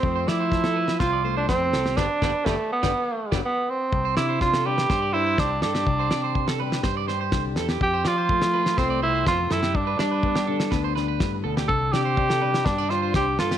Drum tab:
SD |--o-oo-oo---o-oo|o-o-o--o---o----|--o-oo-oo---o-oo|--o--o-oo-o-o-oo|
BD |o---o---o---o---|o-o-o--o---o----|o---o---o---o---|o---o---o---o---|

SD |--o--o-oo---o-oo|--o--o-oo-o-o--o|--o--o-oo-o-o-oo|
BD |o---o---o---o---|o---o---o---o---|o---o---o---o---|